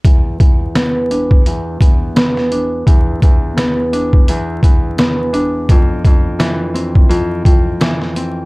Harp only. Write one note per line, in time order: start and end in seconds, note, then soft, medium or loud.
0.05 0.39 E2 medium
0.40 1.46 E2 medium
0.76 2.15 B3 medium
1.11 2.51 D4 medium
1.47 1.79 E2 medium
1.81 2.85 E2 medium
2.16 3.56 B3 medium
2.52 3.92 D4 medium
2.86 3.22 E2 medium
3.23 4.28 E2 medium
3.57 4.98 B3 medium
3.93 5.33 D4 medium
4.29 4.62 E2 medium
4.64 5.74 E2 medium
4.99 6.80 B3 medium
5.33 8.13 D4 medium
5.70 6.05 F2 medium
6.06 7.08 F2 medium
6.39 7.79 E3 medium
6.74 8.16 C4 medium
7.09 7.44 F2 medium
7.46 8.45 F2 medium
7.80 8.45 E3 medium
8.16 8.45 C4 medium